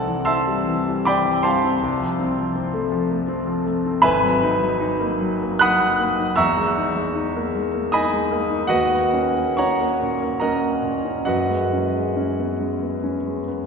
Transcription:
0.00 1.78 C2 medium
0.00 0.07 E3 soft
0.00 0.20 C4 soft
0.00 0.24 A4 medium
0.00 0.24 D5 medium
0.00 0.24 F#5 medium
0.00 0.24 A5 medium
0.07 0.40 E3 soft
0.25 0.60 C4 soft
0.25 1.02 E5 medium
0.25 1.02 A5 medium
0.25 1.01 C6 medium
0.25 1.05 E6 medium
0.47 0.79 G3 soft
0.67 0.99 E3 soft
0.89 1.19 G3 soft
1.05 1.37 C4 soft
1.05 1.42 D5 medium
1.05 1.42 G5 medium
1.05 1.42 B5 medium
1.05 1.44 D6 loud
1.26 1.56 E3 soft
1.43 1.75 G3 soft
1.43 3.62 C5 medium
1.43 3.63 F5 medium
1.43 3.62 A5 medium
1.43 3.66 C6 medium
1.64 1.82 C4 soft
1.82 4.01 C2 medium
2.00 2.30 F3 soft
2.19 2.49 C4 soft
2.37 2.67 F3 soft
2.56 2.85 C4 medium
2.74 3.03 A3 medium
2.92 3.21 F3 soft
3.11 3.41 A3 soft
3.28 3.59 C4 medium
3.47 3.78 F3 soft
3.66 3.97 A3 soft
3.86 4.05 C4 soft
4.02 6.34 G#1 medium
4.02 5.57 B4 medium
4.02 5.57 E5 medium
4.02 5.57 G#5 medium
4.02 5.59 B5 loud
4.23 4.54 F#3 soft
4.43 4.74 D#4 medium
4.62 4.93 F#3 soft
4.81 5.13 D#4 medium
5.00 5.33 A#3 medium
5.21 5.54 F#3 soft
5.42 5.74 A#3 soft
5.59 5.93 D#4 soft
5.59 6.34 F#5 medium
5.59 6.34 B5 medium
5.59 6.34 D#6 medium
5.59 6.37 F#6 loud
5.81 6.11 F#3 soft
5.99 6.30 A#3 soft
6.19 6.38 D#4 soft
6.36 8.68 E2 medium
6.36 7.89 E5 medium
6.36 7.89 A#5 medium
6.36 7.89 C#6 medium
6.36 7.93 E6 loud
6.57 6.88 G#3 soft
6.77 7.08 D#4 medium
6.96 7.27 G#3 soft
7.15 7.47 D#4 soft
7.36 7.67 A#3 medium
7.55 7.86 G#3 soft
7.74 8.05 A#3 soft
7.92 8.25 D#4 soft
7.92 8.68 D#5 medium
7.92 8.68 G#5 medium
7.92 8.68 B5 medium
7.92 8.71 D#6 medium
8.13 8.44 G#3 soft
8.31 8.63 A#3 soft
8.50 8.71 D#4 soft
8.67 11.22 D#2 medium
8.67 9.53 F#4 medium
8.67 9.53 B4 medium
8.67 9.53 D#5 medium
8.67 9.56 F#5 medium
8.92 9.28 A#3 soft
9.14 9.49 C#4 soft
9.37 9.71 A#3 soft
9.57 9.92 C#4 soft
9.57 10.37 C#5 medium
9.57 10.37 F#5 medium
9.57 10.37 A#5 medium
9.57 10.40 C#6 medium
9.81 10.13 A#3 soft
10.02 10.34 A#2 soft
10.22 10.54 A#3 soft
10.40 10.75 C#4 soft
10.40 11.23 A#4 medium
10.40 11.23 D#5 medium
10.40 11.23 F#5 medium
10.40 11.26 A#5 medium
10.62 10.96 A#3 soft
10.82 11.18 A#2 soft
11.05 11.27 C#4 soft
11.25 13.66 F#2 soft
11.25 13.43 F#4 soft
11.25 13.43 B4 medium
11.25 13.42 D#5 medium
11.25 13.46 F#5 medium
11.50 11.85 G#3 soft
11.73 12.08 C#4 soft
11.96 12.30 G#3 soft
12.17 12.52 C#4 soft
12.39 12.74 B3 soft
12.60 12.95 G#3 soft
12.82 13.17 B3 soft
13.04 13.38 C#4 soft
13.27 13.61 G#3 soft
13.48 13.66 B3 soft

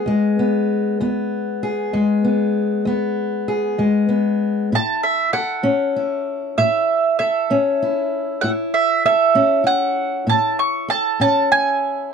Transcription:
0.00 0.38 B3 medium
0.00 0.98 G#4 medium
0.06 0.63 E2 medium
0.06 1.92 G#3 medium
0.39 1.00 B3 medium
1.00 1.56 E2 medium
1.00 2.23 B3 medium
1.63 3.47 G#4 medium
1.93 2.49 E2 medium
1.93 3.78 G#3 medium
2.25 2.86 B3 medium
2.85 3.42 E2 medium
2.85 4.07 B3 medium
3.48 4.68 G#4 medium
3.78 4.34 E2 medium
3.78 4.72 G#3 medium
4.09 4.71 B3 medium
4.72 5.28 A2 medium
4.72 5.96 E4 medium
4.72 5.03 A5 medium
5.03 5.33 E5 medium
5.33 7.19 A4 medium
5.33 6.61 F#5 medium
5.63 6.19 A2 medium
5.63 7.50 C#4 medium
5.96 6.58 E4 medium
6.58 7.13 A2 medium
6.58 7.82 E4 medium
6.58 7.18 E5 medium
7.19 9.05 A4 medium
7.19 8.08 E5 medium
7.50 8.06 A2 medium
7.50 9.35 C#4 medium
7.82 8.44 E4 medium
8.41 8.98 A2 medium
8.41 9.64 E4 medium
8.41 8.50 F#5 medium
8.74 9.02 E5 medium
9.05 10.87 A4 medium
9.05 9.63 E5 medium
9.35 9.91 A2 medium
9.35 11.20 C#4 medium
9.64 10.27 E4 medium
9.64 10.29 F#5 medium
10.27 10.83 A2 medium
10.27 11.51 E4 medium
10.27 10.59 A5 loud
10.59 10.90 C#6 medium
10.88 12.09 A4 medium
10.88 11.20 A5 medium
11.20 11.76 A2 medium
11.20 12.10 C#4 medium
11.20 11.50 A5 medium
11.52 12.14 E4 medium
11.52 12.13 G#5 medium

